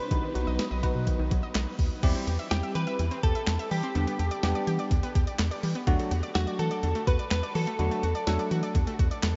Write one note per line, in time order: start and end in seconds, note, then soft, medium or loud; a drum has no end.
0.00 1.51 B4 loud
0.11 0.22 B1 loud
0.11 0.18 D#3 medium
0.11 2.01 F#3 medium
0.11 2.01 B3 medium
0.11 2.01 D#4 medium
0.11 0.23 D#4 medium
0.11 0.23 F#4 medium
0.11 0.23 B4 medium
0.11 kick loud
0.11 closed hi-hat medium
0.23 0.30 D#3 medium
0.35 0.46 B1 loud
0.35 0.42 F#3 medium
0.35 0.59 D#4 medium
0.35 0.59 F#4 medium
0.35 0.59 B4 medium
0.35 closed hi-hat medium
0.47 0.58 B1 loud
0.47 0.54 D#5 loud
0.59 0.66 D#5 medium
0.59 snare loud
0.59 closed hi-hat medium
0.71 0.82 B1 loud
0.71 0.78 D#5 medium
0.83 1.32 D#4 medium
0.83 0.90 F#4 loud
0.83 1.32 F#4 medium
0.83 1.32 B4 loud
0.83 kick medium
0.83 closed hi-hat medium
0.95 1.06 B2 loud
1.07 1.14 D#3 medium
1.07 kick medium
1.07 closed hi-hat medium
1.19 1.30 B1 medium
1.19 1.26 D#3 medium
1.31 1.42 B1 loud
1.31 1.38 F#3 medium
1.31 kick loud
1.31 closed hi-hat medium
1.43 1.50 D#5 medium
1.55 1.66 B1 loud
1.55 1.62 D#5 loud
1.55 snare loud
1.55 clap medium
1.55 closed hi-hat medium
1.79 1.90 D#2 medium
1.79 kick loud
1.79 open hi-hat medium
2.03 2.14 E2 loud
2.03 2.10 E3 medium
2.03 2.27 G3 medium
2.03 2.27 C4 medium
2.03 2.27 E4 medium
2.03 2.27 G4 loud
2.03 kick loud
2.03 closed hi-hat medium
2.03 crash loud
2.15 2.22 C4 medium
2.15 closed hi-hat medium
2.27 2.38 E2 loud
2.27 2.34 G4 medium
2.27 closed hi-hat medium
2.39 2.46 E5 loud
2.39 closed hi-hat medium
2.51 2.62 E2 loud
2.51 3.00 G3 medium
2.51 3.00 C4 medium
2.51 3.00 E4 medium
2.51 3.00 G4 medium
2.51 2.58 G4 medium
2.51 2.75 G4 medium
2.51 snare loud
2.51 closed hi-hat medium
2.63 2.70 E5 medium
2.63 closed hi-hat medium
2.75 2.86 E3 medium
2.75 2.82 G4 loud
2.75 3.20 B4 loud
2.75 closed hi-hat medium
2.87 2.94 E5 medium
2.87 closed hi-hat medium
2.99 3.10 E2 loud
2.99 3.06 E3 medium
2.99 closed hi-hat medium
3.11 3.18 C4 medium
3.11 closed hi-hat medium
3.23 3.34 E2 loud
3.23 3.30 G4 medium
3.23 3.71 A4 loud
3.23 kick loud
3.23 closed hi-hat medium
3.35 3.42 E5 medium
3.35 closed hi-hat medium
3.47 3.58 E2 loud
3.47 snare loud
3.47 clap medium
3.47 closed hi-hat medium
3.59 3.66 E5 medium
3.59 closed hi-hat medium
3.71 3.82 E3 medium
3.71 3.78 G3 medium
3.71 5.11 G4 medium
3.71 open hi-hat medium
3.83 3.90 C4 loud
3.83 closed hi-hat medium
3.95 4.06 E2 loud
3.95 4.02 D3 medium
3.95 4.19 G3 medium
3.95 4.19 B3 medium
3.95 4.19 D4 medium
3.95 4.19 G4 medium
3.95 closed hi-hat medium
4.07 4.14 B3 medium
4.07 closed hi-hat medium
4.19 4.30 E2 loud
4.19 4.26 G4 medium
4.19 closed hi-hat medium
4.31 4.38 D5 loud
4.31 closed hi-hat medium
4.43 4.54 E2 loud
4.43 4.92 G3 medium
4.43 4.92 B3 medium
4.43 4.92 D4 medium
4.43 4.92 G4 loud
4.43 4.50 G4 medium
4.43 snare loud
4.43 closed hi-hat medium
4.55 4.62 D5 medium
4.55 closed hi-hat medium
4.67 4.78 E3 loud
4.67 4.74 G4 loud
4.67 closed hi-hat medium
4.79 4.86 D5 medium
4.79 closed hi-hat medium
4.91 5.02 E2 loud
4.91 4.98 D3 medium
4.91 kick medium
4.91 closed hi-hat medium
5.03 5.10 B3 loud
5.03 closed hi-hat medium
5.15 5.26 E2 loud
5.15 5.22 G4 medium
5.15 kick loud
5.15 closed hi-hat medium
5.27 5.34 D5 medium
5.27 closed hi-hat medium
5.39 5.50 E2 loud
5.39 snare loud
5.39 clap medium
5.39 closed hi-hat medium
5.51 5.58 D5 medium
5.51 closed hi-hat medium
5.63 5.74 E3 loud
5.63 5.70 G3 medium
5.63 open hi-hat medium
5.75 5.82 B3 medium
5.75 closed hi-hat medium
5.87 5.98 E2 loud
5.87 5.94 D3 medium
5.87 6.11 F#3 loud
5.87 6.11 A3 medium
5.87 6.11 D4 medium
5.87 6.11 F#4 loud
5.87 kick loud
5.87 closed hi-hat medium
5.99 6.06 A3 medium
5.99 closed hi-hat medium
6.11 6.22 E2 loud
6.11 6.18 F#4 medium
6.11 closed hi-hat medium
6.23 6.30 D5 loud
6.23 closed hi-hat medium
6.35 6.46 E2 loud
6.35 6.84 F#3 medium
6.35 6.84 A3 medium
6.35 6.84 D4 medium
6.35 6.42 F#4 medium
6.35 6.84 F#4 medium
6.35 6.59 F#4 medium
6.35 snare loud
6.35 closed hi-hat medium
6.47 6.54 D5 medium
6.47 closed hi-hat medium
6.59 6.70 E3 loud
6.59 6.66 F#4 medium
6.59 7.07 A4 loud
6.59 closed hi-hat medium
6.71 6.78 D5 medium
6.71 closed hi-hat medium
6.83 6.94 E2 loud
6.83 6.90 D3 medium
6.83 closed hi-hat medium
6.95 7.02 A3 loud
6.95 closed hi-hat medium
7.07 7.18 E2 loud
7.07 7.14 F#4 medium
7.07 7.30 B4 loud
7.07 kick loud
7.07 closed hi-hat medium
7.19 7.26 D5 medium
7.19 closed hi-hat medium
7.31 7.42 E2 loud
7.31 7.55 B4 loud
7.31 snare loud
7.31 clap medium
7.31 closed hi-hat medium
7.43 7.50 D5 medium
7.43 closed hi-hat medium
7.55 7.66 E3 loud
7.55 7.62 F#3 medium
7.55 8.95 A4 medium
7.55 open hi-hat medium
7.67 7.74 A3 loud
7.67 closed hi-hat medium
7.79 7.90 E2 loud
7.79 7.86 D3 medium
7.79 8.03 F#3 medium
7.79 8.03 A3 medium
7.79 8.04 D4 medium
7.79 8.03 F#4 medium
7.79 closed hi-hat medium
7.91 7.98 A3 medium
7.91 closed hi-hat medium
8.03 8.14 E2 loud
8.03 8.10 F#4 medium
8.03 closed hi-hat medium
8.15 8.22 D5 loud
8.15 closed hi-hat medium
8.27 8.38 E2 loud
8.27 8.76 F#3 medium
8.27 8.76 A3 medium
8.27 8.76 D4 medium
8.27 8.34 F#4 medium
8.27 8.76 A4 loud
8.27 snare loud
8.27 closed hi-hat medium
8.39 8.46 D5 medium
8.39 closed hi-hat medium
8.51 8.62 E3 loud
8.51 8.58 F#4 loud
8.51 closed hi-hat medium
8.63 8.70 D5 medium
8.63 closed hi-hat medium
8.75 8.86 E2 loud
8.75 8.82 D3 medium
8.75 kick medium
8.75 closed hi-hat medium
8.87 8.94 A3 loud
8.87 closed hi-hat medium
8.99 9.10 E2 loud
8.99 9.06 F#4 medium
8.99 kick loud
8.99 closed hi-hat medium
9.11 9.18 D5 medium
9.11 closed hi-hat soft
9.23 9.34 E2 loud
9.23 snare loud
9.23 clap medium
9.23 closed hi-hat medium